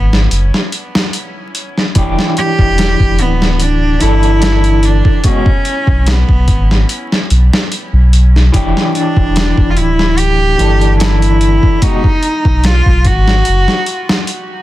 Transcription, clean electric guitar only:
1.95 E3 D4 G4
4.00 E3 D4 A4
5.24 B2 G#3 F#4
8.52 E3 D4 G4
10.58 E3 D4 A4
11.82 B2 G#3 F#4

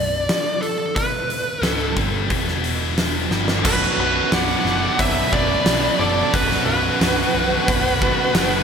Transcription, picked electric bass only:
Already playing: B0
1.62 C#1
1.96 G1
2.30 E1
3.31 G1
3.65 B0
3.98 B0
4.32 B0
4.65 F#1
4.99 B0
5.33 B0
5.65 B1
5.99 F#1
6.34 B0
6.66 B0
7.01 B0
7.35 B0
7.68 B0
8.35 F#1

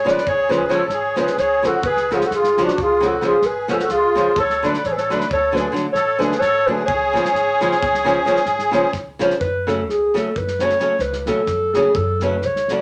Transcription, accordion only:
0.09 B4
0.28 G#4
0.52 G#4
0.72 A4
0.93 G#4
1.20 G#4
1.38 G#4
1.66 F#4
1.86 G#4
2.13 F4 F#4
2.24 F#4
2.35 F4
2.60 D4
2.81 F4
3.04 F#4
3.24 F4
3.45 G#4
3.69 F#4 G#4
3.79 F#4
3.90 F4
4.36 A4
4.64 B4
4.85 A4
4.89 G#4
4.96 A4
5.11 B4
5.32 A4
5.57 G#4
5.93 A4
6.19 G#4
6.39 A4
6.65 G#4
6.84 G#4

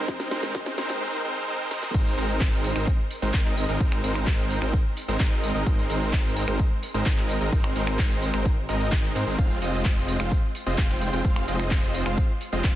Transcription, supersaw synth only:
0.08 G#3 C4 D#4 A#4 C5
0.32 G#3 C4 D#4 A#4 C5
0.55 G#3 C4 D#4 A#4 C5
0.78 G#3 C4 D#4 A#4 C5
1.01 G#3 C4 D#4 A#4 C5
1.25 G#3 C4 D#4 A#4 C5
1.48 G#3 C4 D#4 A#4 C5
1.71 G#3 C4 D#4 A#4 C5
1.94 G#3 C4 D#4 A#4 C5
2.18 G#3 C4 D#4 A#4 C5
2.76 G#3 C4 D#4 A#4 C5
3.22 G#3 C4 D#4 A#4 C5
3.34 G#3 C4 D#4 A#4 C5
3.45 G#3 C4 D#4 A#4 D#5
3.69 G#3 C4 D#4 A#4 D#5
3.80 G#3 C4 D#4 A#4 C5
4.04 G#3 C4 D#4 A#4 C5
4.62 G#3 C4 D#4 A#4 C5
5.08 G#3 C4 D#4 A#4 C5
5.20 G#3 C4 D#4 A#4 C5
5.31 G#3 C4 D#4 A#4 D#5
5.55 G#3 C4 D#4 A#4 D#5
5.66 G#3 C4 D#4 A#4 C5
5.90 G#3 C4 D#4 A#4 C5
6.48 G#3 C4 D#4 A#4 C5
6.94 G#3 C4 D#4 A#4 C5
7.06 G#3 C4 D#4 A#4 C5
7.18 G#3 C4 D#4 A#4 D#5
7.41 G#3 C4 D#4 A#4 D#5
7.52 G#3 C4 D#4 A#4 C5
7.76 G#3 C4 D#4 A#4 C5
8.34 G#3 C4 D#4 A#4 C5
8.69 G#3 C4 D#4 A#4 D#5
9.15 G#3 C4 D#4 A#4 C5
9.27 G#3 C4 D#4 A#4 C5
9.38 G#3 C4 F4 C5 F5
9.62 G#3 C4 F4 C5 D#5
10.20 G#3 C4 F4 C5 F5
10.66 G#3 C4 F4 C5 D#5
10.78 G#3 C4 F4 C5 F5
10.90 G#3 C4 F4 C5 G5
11.13 G#3 C4 F4 C5 G5
11.25 G#3 C4 F4 C5 F5
11.48 G#3 C4 F4 C5 D#5
12.06 G#3 C4 F4 C5 F5
12.53 G#3 C4 F4 C5 D#5
12.64 G#3 C4 F4 C5 F5

